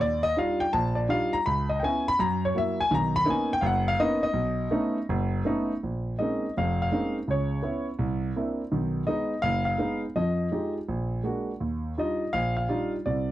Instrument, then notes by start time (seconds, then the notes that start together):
grand piano
0.00 D#2 D5
0.23 D#5
0.37 G3 D4 D#4 F4 F5
0.60 G5
0.73 A#1 A5
0.95 D5
1.08 G3 D4 D#4 F4 F5
1.33 A#5
1.46 C#2 B5
1.69 D#5
1.80 B3 C#4 G5
1.84 E4 G#5
2.08 B5
2.19 F#2 A#5
2.45 C#5
2.55 F#3 A#3 E4 E5
2.81 G#5
2.91 B1 D#3 A#5
3.16 B5
3.26 A#3 B3 C#4 D#4
3.30 G#5
3.53 G5
3.61 F#1 F5
3.66 F#5
3.88 F5
3.99 A#3 B3 C#4 D#4 D#5
4.23 D#5
4.33 B1
4.71 A3 B3 C#4 D#4
5.09 F#1
5.45 A3 B3 C#4 D#4
5.83 A#1
6.19 G#3 A#3 C4 C#4 D#4 D#5
6.57 F1 F2 F5
6.82 F5
6.92 G#3 A#3 C4 C#4 D#4
7.28 C#2 C#3 C#5
7.63 B3 C#4 E4
7.99 C2
8.36 A#3 C4 D4 E4
8.72 B1 D#3
9.07 G#3 B3 D#4 D#5
9.42 F#1 F5
9.65 F5
9.78 G#3 B3 D#4
10.16 F2 F3 D#5
10.52 G#3 D#4 F4 G4
10.89 A#1
11.24 G#3 A#3 D4 F#4
11.60 D#2
11.98 G3 D4 D#4 F4 D#5
12.33 A#1 F5
12.57 F5
12.69 G3 D4 D#4 F4
13.06 C2 C3 D5